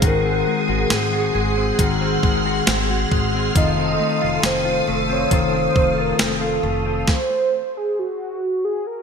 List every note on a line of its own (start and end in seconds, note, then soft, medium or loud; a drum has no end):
0.00 0.41 G#1 medium
0.00 1.79 D#3 medium
0.00 0.46 G#3 medium
0.00 0.11 C#4 soft
0.00 0.68 F#4 medium
0.00 3.51 G#4 medium
0.00 3.51 F#5 medium
0.00 7.04 C6 medium
0.00 1.77 D#6 medium
0.00 kick loud
0.00 closed hi-hat medium
0.07 0.95 A#4 medium
0.25 0.90 C4 medium
0.47 1.34 G#3 medium
0.68 0.88 G#1 medium
0.68 1.12 F#4 medium
0.90 1.29 G#1 medium
0.90 1.57 C4 medium
0.90 2.68 G#4 medium
0.90 snare medium
0.90 closed hi-hat medium
1.13 1.79 F#4 medium
1.35 1.73 G#1 medium
1.35 2.22 G#3 medium
1.57 2.01 C4 medium
1.79 2.17 G#1 medium
1.79 3.56 D#3 medium
1.79 2.45 F#4 medium
1.79 3.54 F6 medium
1.79 kick medium
1.79 closed hi-hat medium
2.01 2.68 C4 medium
2.23 2.62 G#1 medium
2.23 3.11 G#3 medium
2.23 kick medium
2.46 2.89 F#4 medium
2.67 3.06 G#1 loud
2.67 3.34 C4 medium
2.67 snare loud
2.67 closed hi-hat medium
2.90 3.56 F#4 medium
3.11 3.50 G#1 medium
3.11 3.65 G#3 medium
3.11 kick medium
3.34 3.78 C4 medium
3.56 3.94 F1 loud
3.56 5.31 D#3 medium
3.56 4.20 F4 medium
3.56 7.05 A4 medium
3.56 4.40 D#5 loud
3.56 7.05 F5 medium
3.56 7.05 D#6 medium
3.56 kick loud
3.56 closed hi-hat medium
3.78 4.43 C4 soft
4.00 4.87 A3 medium
4.21 4.41 F1 medium
4.21 4.64 F4 medium
4.43 4.82 F1 medium
4.43 5.09 C4 medium
4.43 5.14 C5 loud
4.43 snare medium
4.43 closed hi-hat medium
4.65 5.31 F4 medium
4.87 5.26 F1 medium
4.87 5.74 A3 medium
5.09 5.53 C4 medium
5.09 5.36 C#5 medium
5.31 5.70 F1 medium
5.31 7.17 D#3 medium
5.31 5.97 F4 medium
5.31 6.02 C5 loud
5.31 kick medium
5.31 closed hi-hat medium
5.53 6.19 C4 medium
5.75 6.15 F1 medium
5.75 6.62 A3 medium
5.75 kick medium
5.98 6.40 F4 medium
5.98 6.25 A#4 medium
6.19 6.59 F1 medium
6.19 6.85 C4 medium
6.19 snare loud
6.19 closed hi-hat medium
6.23 7.12 A4 medium
6.41 7.16 F4 medium
6.63 7.02 F1 medium
6.63 7.17 A3 medium
6.86 7.17 C4 soft
7.08 7.79 C5 loud
7.08 kick medium
7.08 snare medium
7.77 8.01 G#4 medium
7.99 8.66 F#4 medium
8.65 8.88 G#4 medium
8.87 9.02 A#4 medium